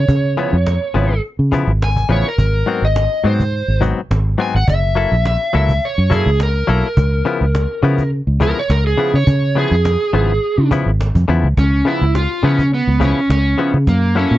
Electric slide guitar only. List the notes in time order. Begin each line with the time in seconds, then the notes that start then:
Already playing: C#5
1.84 G#5
2.12 C#5
2.28 A#4
2.85 D#5
3.27 C5
4.42 G#5
4.56 F#5
4.70 E5
5.27 E5
5.57 E5
5.85 C#5
6.14 G#4
6.43 A#4
8.43 A#4
8.59 C#5
8.71 A#4
8.87 G#4
9.15 C#5
9.58 G#4
11.59 C#4
11.88 E4
12.17 F4
12.45 C#4
12.74 B3
13.03 C#4
13.32 C#4
13.89 A#3
14.18 C#4